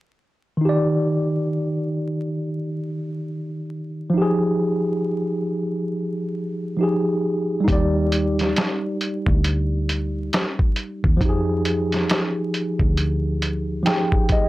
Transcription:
0.57 4.09 D#3 medium
0.61 4.11 D#4 medium
0.65 4.13 G4 medium
0.65 4.15 D5 medium
4.10 6.73 F3 medium
4.14 6.75 D#4 medium
4.14 6.77 G4 medium
4.22 6.79 G#4 medium
6.77 7.66 F3 medium
6.77 7.63 D#4 soft
6.81 7.67 G4 soft
6.81 7.70 G#4 medium
7.60 11.13 G3 medium
7.60 11.15 D#4 medium
7.68 8.53 D#2 medium
7.68 11.17 G4 medium
7.68 kick loud
7.68 closed hi-hat medium
7.72 11.19 D5 medium
8.12 closed hi-hat medium
8.39 snare soft
8.39 closed hi-hat soft
8.56 snare medium
8.56 closed hi-hat medium
9.01 closed hi-hat medium
9.26 10.29 D2 loud
9.26 kick medium
9.44 closed hi-hat medium
9.89 closed hi-hat medium
10.33 snare loud
10.33 closed hi-hat medium
10.59 kick medium
10.76 closed hi-hat medium
11.04 11.21 D#2 medium
11.04 kick medium
11.17 13.80 F3 medium
11.17 13.82 D#4 medium
11.17 kick loud
11.21 12.05 F2 loud
11.21 13.84 G4 medium
11.21 closed hi-hat medium
11.29 13.86 G#4 medium
11.65 closed hi-hat medium
11.92 snare soft
11.92 closed hi-hat soft
12.10 snare loud
12.10 closed hi-hat medium
12.54 closed hi-hat medium
12.79 13.82 D2 medium
12.79 kick medium
12.97 closed hi-hat medium
13.42 closed hi-hat medium
13.83 14.49 F3 medium
13.83 14.49 D#4 soft
13.83 14.49 G4 soft
13.83 14.27 G5 medium
13.83 closed hi-hat medium
13.87 14.49 G#4 medium
13.87 snare loud
14.12 kick medium
14.29 14.49 D#5 medium
14.29 kick medium
14.29 closed hi-hat medium

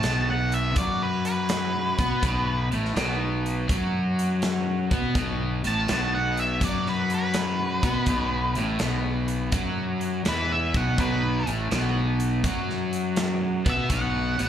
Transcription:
0.00 0.28 A5 medium
0.00 snare loud
0.00 closed hi-hat medium
0.04 0.74 B1 medium
0.04 0.78 B2 medium
0.30 0.53 F#5 medium
0.52 0.77 E5 medium
0.52 closed hi-hat medium
0.76 1.95 F#2 medium
0.76 1.98 F#3 loud
0.76 1.01 D5 medium
0.76 kick loud
0.76 closed hi-hat medium
1.03 1.25 B4 medium
1.25 2.68 B4 medium
1.25 closed hi-hat medium
1.49 snare loud
1.49 closed hi-hat medium
1.98 2.22 B2 medium
1.98 2.23 B3 loud
1.98 kick medium
1.98 closed hi-hat medium
2.23 2.69 B1 medium
2.23 2.71 B2 loud
2.23 kick loud
2.23 closed hi-hat medium
2.72 2.95 A1 medium
2.72 2.96 A2 medium
2.72 closed hi-hat medium
2.85 snare soft
2.96 3.66 B1 medium
2.96 3.69 B2 loud
2.96 snare loud
2.96 closed hi-hat medium
3.46 closed hi-hat medium
3.69 4.88 F#2 medium
3.69 4.90 F#3 loud
3.69 kick loud
3.69 closed hi-hat medium
4.19 closed hi-hat medium
4.42 snare loud
4.42 closed hi-hat medium
4.91 5.14 B2 medium
4.91 5.15 B3 medium
4.91 kick loud
4.91 closed hi-hat medium
5.15 5.61 B1 loud
5.15 5.63 B2 loud
5.15 kick loud
5.15 closed hi-hat medium
5.64 5.88 A1 medium
5.64 5.88 A2 loud
5.64 6.13 A5 medium
5.64 closed hi-hat medium
5.88 6.58 B1 medium
5.88 6.61 B2 medium
5.88 snare loud
5.88 closed hi-hat medium
6.15 6.37 F#5 medium
6.37 6.62 E5 medium
6.37 closed hi-hat medium
6.61 7.80 F#2 medium
6.61 7.82 F#3 loud
6.61 6.87 D5 medium
6.61 kick loud
6.61 closed hi-hat medium
6.86 7.11 B4 medium
6.86 snare soft
7.10 closed hi-hat medium
7.14 8.54 B4 medium
7.34 snare loud
7.34 closed hi-hat medium
7.83 8.06 B2 medium
7.83 8.07 B3 medium
7.83 kick loud
7.83 closed hi-hat medium
8.06 8.53 B1 medium
8.06 8.55 B2 loud
8.06 kick loud
8.06 closed hi-hat medium
8.55 8.79 A1 medium
8.55 8.79 A2 medium
8.55 closed hi-hat medium
8.79 9.50 B1 medium
8.79 9.52 B2 medium
8.79 snare loud
8.79 closed hi-hat medium
9.28 closed hi-hat medium
9.52 10.22 F#2 medium
9.52 10.25 F#3 loud
9.52 kick loud
9.52 closed hi-hat medium
10.01 closed hi-hat medium
10.25 10.72 E2 medium
10.25 10.73 E3 loud
10.25 10.51 B4 medium
10.25 snare loud
10.25 closed hi-hat medium
10.52 10.75 E5 medium
10.74 10.97 B1 medium
10.74 10.97 B2 loud
10.74 10.99 F#5 medium
10.74 kick loud
10.74 closed hi-hat medium
10.98 11.44 B1 medium
10.98 11.46 B2 loud
10.98 11.47 B4 loud
10.98 kick loud
10.98 closed hi-hat medium
11.47 11.70 A1 medium
11.47 11.71 A2 medium
11.47 closed hi-hat medium
11.71 12.41 B1 medium
11.71 12.44 B2 medium
11.71 snare loud
11.71 closed hi-hat medium
12.20 closed hi-hat medium
12.44 13.63 F#2 medium
12.44 13.65 F#3 medium
12.44 kick medium
12.44 closed hi-hat medium
12.70 snare soft
12.93 closed hi-hat medium
13.16 snare loud
13.16 closed hi-hat medium
13.66 13.89 B2 medium
13.66 13.90 B3 medium
13.66 13.92 E5 medium
13.66 kick loud
13.66 closed hi-hat medium
13.90 14.36 B1 medium
13.90 14.38 B2 loud
13.90 14.49 F#5 medium
13.90 kick medium
13.90 closed hi-hat medium
14.38 14.49 A1 medium
14.38 14.49 A2 medium
14.38 closed hi-hat medium

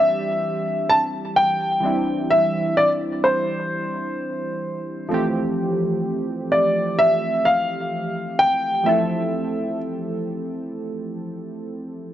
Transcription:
0.00 1.77 E3 medium
0.00 1.78 G3 medium
0.00 1.78 C4 medium
0.00 1.79 D4 medium
0.00 1.80 G4 medium
0.00 0.92 E5 medium
0.90 1.00 A5 loud
1.36 2.32 G5 medium
1.80 5.05 E3 medium
1.80 5.06 G3 medium
1.80 5.07 C4 medium
1.84 5.07 D4 medium
1.84 5.08 E4 medium
2.31 2.78 E5 medium
2.77 2.88 D5 medium
3.24 5.07 C5 medium
5.09 8.82 E3 medium
5.09 8.81 F3 medium
5.09 8.81 A3 medium
5.09 8.82 C4 medium
5.14 8.83 G4 medium
6.52 7.00 D5 medium
6.99 7.46 E5 medium
7.45 8.42 F5 medium
8.39 8.87 G5 loud
8.84 12.14 F3 medium
8.84 12.14 A3 medium
8.84 12.14 C4 medium
8.84 12.14 E4 medium
8.84 9.75 E5 medium
8.89 12.14 A4 medium

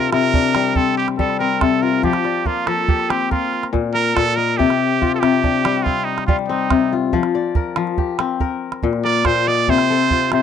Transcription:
0.00 0.11 C3 medium
0.00 0.34 D4 medium
0.00 0.40 D#4 medium
0.00 1.42 F4 medium
0.00 0.47 G4 medium
0.00 0.27 A4 medium
0.00 0.13 A#4 loud
0.00 0.57 A5 medium
0.12 1.60 C3 medium
0.12 0.78 A#4 loud
0.12 calabash click medium
0.23 calabash click soft
0.34 2.02 D4 medium
0.34 calabash thump medium
0.55 1.18 G3 medium
0.55 calabash click medium
0.75 1.40 C4 medium
0.75 0.97 A4 medium
0.75 calabash thump medium
0.98 1.07 G4 medium
1.08 calabash click soft
1.19 2.09 G3 medium
1.19 1.38 A4 medium
1.19 calabash thump medium
1.30 calabash click soft
1.40 3.09 C4 medium
1.40 1.62 A#4 medium
1.61 2.09 C3 medium
1.61 1.84 A4 medium
1.61 calabash thump medium
1.61 calabash click medium
1.83 3.34 F4 medium
1.83 2.04 A#4 medium
2.03 2.66 F3 medium
2.03 2.48 G4 medium
2.03 calabash thump medium
2.03 calabash click soft
2.13 calabash click medium
2.25 3.35 D5 medium
2.25 calabash click soft
2.45 4.39 A#3 medium
2.45 2.69 F4 medium
2.45 calabash thump medium
2.67 3.36 F3 medium
2.67 3.11 A4 medium
2.67 calabash click medium
2.88 4.30 G4 medium
2.88 calabash thump medium
3.00 calabash click soft
3.10 4.90 C4 medium
3.10 3.31 G4 medium
3.10 calabash click medium
3.21 calabash click soft
3.31 3.66 F4 medium
3.31 3.94 A#4 medium
3.31 calabash thump medium
3.31 calabash click soft
3.53 calabash click soft
3.63 calabash click soft
3.73 4.15 A#2 medium
3.73 calabash thump medium
3.73 calabash click soft
3.94 4.17 A#4 loud
3.94 5.22 A#4 medium
4.16 4.64 A#2 medium
4.16 4.38 A4 medium
4.16 calabash thump medium
4.16 calabash click medium
4.28 calabash click soft
4.36 4.59 A#4 medium
4.36 5.49 D#5 medium
4.36 calabash click soft
4.49 calabash click soft
4.57 5.21 C3 medium
4.57 5.14 G4 medium
4.57 calabash thump medium
4.70 calabash click soft
5.01 6.53 F4 medium
5.01 calabash thump medium
5.15 5.21 A4 medium
5.20 6.70 C3 medium
5.20 5.85 G4 medium
5.20 calabash click medium
5.33 calabash click soft
5.43 7.11 D4 medium
5.43 calabash thump medium
5.65 6.28 G3 medium
5.65 calabash click medium
5.83 6.49 C4 medium
5.83 6.06 F4 medium
5.83 calabash thump medium
6.05 6.26 D#4 medium
6.18 calabash click soft
6.27 7.19 G3 medium
6.27 6.37 F4 medium
6.27 calabash thump medium
6.39 calabash click soft
6.49 8.19 C4 medium
6.49 6.94 D#4 medium
6.70 7.19 C3 medium
6.70 calabash thump medium
6.70 calabash click medium
6.92 8.44 F4 medium
7.13 7.75 F3 medium
7.13 calabash thump medium
7.23 calabash click soft
7.35 8.46 D5 medium
7.55 8.40 A#4 medium
7.55 calabash thump medium
7.76 8.46 F3 medium
7.76 calabash click medium
7.87 calabash click soft
7.98 9.39 G4 medium
7.98 calabash thump medium
8.19 10.00 C4 medium
8.19 calabash click medium
8.40 9.04 A#4 medium
8.40 calabash thump medium
8.72 calabash click soft
8.83 9.25 A#2 medium
8.83 calabash thump medium
8.93 calabash click soft
9.05 9.96 A#4 medium
9.05 9.28 D5 loud
9.25 9.74 A#2 medium
9.25 9.49 C5 loud
9.25 calabash thump medium
9.25 calabash click medium
9.47 9.72 D5 medium
9.47 10.42 D#5 medium
9.68 10.31 C3 medium
9.68 10.33 C5 loud
9.68 calabash thump medium
9.78 calabash click soft
9.90 10.42 A4 medium
10.10 10.42 F4 medium
10.10 calabash thump medium
10.32 10.42 C3 medium
10.32 10.42 C5 medium
10.32 calabash click medium

